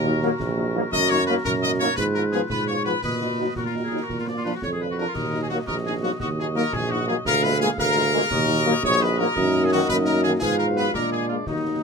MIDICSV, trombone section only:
0, 0, Header, 1, 2, 480
1, 0, Start_track
1, 0, Key_signature, -6, "minor"
1, 0, Tempo, 351288
1, 1265, Time_signature, 6, 3, 24, 8
1, 16167, End_track
2, 0, Start_track
2, 0, Title_t, "Trombone section"
2, 0, Program_c, 0, 61
2, 300, Note_on_c, 0, 54, 81
2, 303, Note_on_c, 0, 58, 81
2, 385, Note_off_c, 0, 54, 0
2, 387, Note_off_c, 0, 58, 0
2, 1017, Note_on_c, 0, 58, 82
2, 1025, Note_on_c, 0, 54, 77
2, 1103, Note_off_c, 0, 58, 0
2, 1109, Note_off_c, 0, 54, 0
2, 1744, Note_on_c, 0, 54, 78
2, 1744, Note_on_c, 0, 58, 80
2, 1828, Note_off_c, 0, 54, 0
2, 1828, Note_off_c, 0, 58, 0
2, 2461, Note_on_c, 0, 54, 72
2, 2465, Note_on_c, 0, 58, 71
2, 2546, Note_off_c, 0, 54, 0
2, 2549, Note_off_c, 0, 58, 0
2, 3178, Note_on_c, 0, 53, 66
2, 3180, Note_on_c, 0, 59, 65
2, 3265, Note_off_c, 0, 53, 0
2, 3266, Note_off_c, 0, 59, 0
2, 3893, Note_on_c, 0, 53, 54
2, 3898, Note_on_c, 0, 59, 57
2, 3982, Note_off_c, 0, 53, 0
2, 3985, Note_off_c, 0, 59, 0
2, 4622, Note_on_c, 0, 63, 55
2, 4626, Note_on_c, 0, 54, 56
2, 4708, Note_off_c, 0, 63, 0
2, 4710, Note_off_c, 0, 54, 0
2, 5350, Note_on_c, 0, 54, 53
2, 5362, Note_on_c, 0, 63, 53
2, 5433, Note_off_c, 0, 54, 0
2, 5444, Note_off_c, 0, 63, 0
2, 6062, Note_on_c, 0, 53, 54
2, 6067, Note_on_c, 0, 62, 53
2, 6148, Note_off_c, 0, 53, 0
2, 6151, Note_off_c, 0, 62, 0
2, 6807, Note_on_c, 0, 62, 51
2, 6808, Note_on_c, 0, 53, 51
2, 6889, Note_off_c, 0, 62, 0
2, 6890, Note_off_c, 0, 53, 0
2, 7524, Note_on_c, 0, 58, 61
2, 7525, Note_on_c, 0, 54, 59
2, 7606, Note_off_c, 0, 58, 0
2, 7607, Note_off_c, 0, 54, 0
2, 8225, Note_on_c, 0, 54, 61
2, 8227, Note_on_c, 0, 58, 59
2, 8310, Note_off_c, 0, 54, 0
2, 8312, Note_off_c, 0, 58, 0
2, 8956, Note_on_c, 0, 54, 69
2, 8962, Note_on_c, 0, 58, 68
2, 9038, Note_off_c, 0, 54, 0
2, 9044, Note_off_c, 0, 58, 0
2, 9666, Note_on_c, 0, 58, 69
2, 9667, Note_on_c, 0, 54, 72
2, 9751, Note_off_c, 0, 58, 0
2, 9752, Note_off_c, 0, 54, 0
2, 10403, Note_on_c, 0, 56, 80
2, 10405, Note_on_c, 0, 58, 79
2, 10485, Note_off_c, 0, 56, 0
2, 10487, Note_off_c, 0, 58, 0
2, 11098, Note_on_c, 0, 58, 79
2, 11100, Note_on_c, 0, 56, 84
2, 11186, Note_off_c, 0, 58, 0
2, 11187, Note_off_c, 0, 56, 0
2, 11828, Note_on_c, 0, 58, 80
2, 11829, Note_on_c, 0, 54, 81
2, 11912, Note_off_c, 0, 58, 0
2, 11913, Note_off_c, 0, 54, 0
2, 12550, Note_on_c, 0, 54, 83
2, 12555, Note_on_c, 0, 58, 83
2, 12633, Note_off_c, 0, 54, 0
2, 12637, Note_off_c, 0, 58, 0
2, 13289, Note_on_c, 0, 51, 79
2, 13294, Note_on_c, 0, 58, 76
2, 13370, Note_off_c, 0, 51, 0
2, 13376, Note_off_c, 0, 58, 0
2, 14006, Note_on_c, 0, 58, 68
2, 14009, Note_on_c, 0, 51, 69
2, 14088, Note_off_c, 0, 58, 0
2, 14091, Note_off_c, 0, 51, 0
2, 14702, Note_on_c, 0, 59, 64
2, 14716, Note_on_c, 0, 53, 60
2, 14788, Note_off_c, 0, 59, 0
2, 14798, Note_off_c, 0, 53, 0
2, 15432, Note_on_c, 0, 56, 49
2, 15433, Note_on_c, 0, 58, 51
2, 15514, Note_off_c, 0, 56, 0
2, 15515, Note_off_c, 0, 58, 0
2, 16167, End_track
0, 0, End_of_file